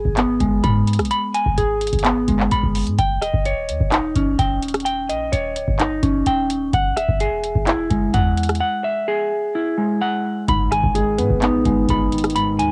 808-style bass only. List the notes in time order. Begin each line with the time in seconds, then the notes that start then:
0.05 G#1
0.41 G#1
0.64 G#2
0.99 B1
1.46 G#1
1.58 G#1
1.93 G#1
2.28 G#1
2.51 G#1
2.63 G#1
2.87 G#2
2.98 D#1
3.33 D#1
3.69 D#2
3.80 D#1
4.04 E1
4.16 D#1
4.39 D#1
5.09 A#1
5.33 D#1
5.56 C#1
5.68 G1
6.03 D#1
6.26 D#1
6.73 E1
6.97 D#1
7.09 E1
7.55 E1
7.91 E1
8.14 E2
10.48 G#1
10.83 G#1
11.19 G#2
11.30 G#1
11.54 A#1
11.66 G#1
11.89 G#1
12.59 D#2